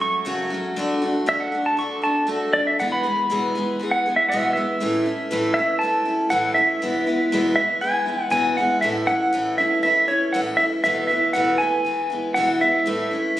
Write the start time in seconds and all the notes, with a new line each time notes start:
0.00 F#3 A3 C#4 F#4 C#6
0.25 F#2 C#3 F#3 A3 C#4 F#4
0.50 F#3 A3 C#4 F#4
0.76 D3 A3 D4 F#4
1.02 A3 D4 F#4
1.26 D3 A3 D4 F#4 E5
1.40 F#5
1.52 A3 D4 F#4
1.66 A5
1.77 D3 A3 D4 F#4 C#6
2.02 A3 D4 F#4 A5
2.27 D3 A3 D4 F#4
2.53 A3 D4 F#4 D5
2.67 E5
2.79 E2 B2 E3 G#3 B3 G#4 F#5
2.92 B5
3.03 E3 G#3 B3 G#4
3.30 E2 B2 E3 G#3 B3 G#4
3.55 E3 G#3 B3 G#4
3.79 E3 G#3 B3 G#4
3.91 F#5
4.06 E3 G#3 B3 G#4
4.16 E5
4.29 E2 B2 E3 E5 F#5
4.33 G#3 B3 G#4
4.53 B3 G#4 E5
4.58 E3 G#3
4.80 A2 E3 A3 C#4 E4
5.06 A3 C#4 E4
5.31 A2 E3 A3 C#4 E4
5.54 E4 E5
5.58 A3 C#4
5.79 E3 A5
5.83 A3 C#4 E4
6.05 A3 C#4 E4
6.30 A2 E3 A3 C#4 E4 F#5
6.54 C#4 E4 E5
6.59 A3
6.82 E2 B2 E3 G#3 B3 E4
7.06 E3 G#3 B3 E4
7.32 E2 B2 E3 G#3 B3 E4
7.56 G#3 B3 E4 E5
7.60 E3
7.81 E3 G#3 B3 E4 G#5
8.05 E3 G#3 B3 E4
8.30 E2 B2 E3 G#3 B3 E4 G#5
8.57 E3 G#3 B3 E4 F#5
8.81 A2 E3 A3 C#4 E4 E5
9.07 A3 C#4 E4 F#5
9.33 A2 E3 A3 C#4 E4
9.58 A3 C#4 E4 E5
9.83 E3 A3 C#4 E4 E5
10.08 A3 C#4 E4 C#5
10.33 A2 E3 A3 C#4 E4 F#5
10.57 C#4 E4 E5
10.62 A3
10.84 E2 B2 E3 A3 B3 E4 E5
11.07 B3 E4 E5
11.12 E3 A3
11.33 E2 B2 E3 A3 B3 E4 F#5
11.58 A3 B3 E4 G#5
11.63 E3
11.85 E3 G#3 B3 E4
12.10 E3 G#3 B3 E4
12.34 E2 B2 E3 G#3 B3 E4 F#5
12.61 E3 G#3 B3 E4 E5
12.86 A2 E3 A3 C#4 E4
13.11 A3 C#4 E4
13.37 A2